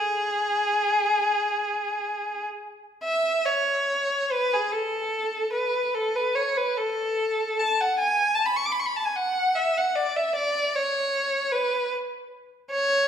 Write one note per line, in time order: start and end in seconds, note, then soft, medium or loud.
0.00 2.44 G#4 medium
3.04 3.44 E5 medium
3.46 4.31 C#5 medium
4.32 4.52 B4 medium
4.53 4.73 G#4 medium
4.73 5.52 A4 medium
5.53 5.93 B4 medium
5.94 6.14 A4 medium
6.16 6.35 B4 medium
6.35 6.55 C#5 medium
6.57 6.76 B4 medium
6.78 7.58 A4 medium
7.59 7.78 A5 medium
7.80 7.99 F#5 medium
7.99 8.32 G#5 medium
8.34 8.47 A5 medium
8.46 8.56 B5 soft
8.56 8.65 C#6 soft
8.65 8.72 D6 soft
8.72 8.79 B5 soft
8.79 8.87 C#6 soft
8.86 8.95 B5 soft
8.96 9.05 A5 soft
9.05 9.15 G#5 soft
9.16 9.56 F#5 medium
9.56 9.76 E5 medium
9.77 9.96 F#5 medium
9.95 10.15 D5 medium
10.16 10.35 E5 medium
10.35 10.74 D5 medium
10.75 11.54 C#5 medium
11.52 11.91 B4 medium
12.71 13.08 C#5 medium